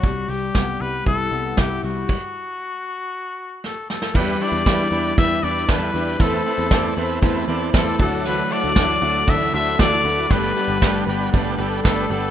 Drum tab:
CC |----------------|x---------------|x---------------|----------------|
RD |----------------|----------------|----x---x---x---|x---x---x---x---|
HH |x-o-x-o-x-o-x-o-|----------------|--o-p-o-p-o-p-o-|p-o-p-o-p-o-p-o-|
SD |----o-------o---|------------o-oo|----o-------o---|----o-------o---|
BD |o---o---o---o---|o---------------|o---o---o---o---|o---o---o---o-o-|

CC |----------------|----------------|
RD |x---x---x---x---|x---x---x---x---|
HH |p-o-p-o-p-o-p-o-|p-o-p-o-p-o-p-o-|
SD |----o-------o---|----o-------o---|
BD |----o---o---o---|o---o---o---o---|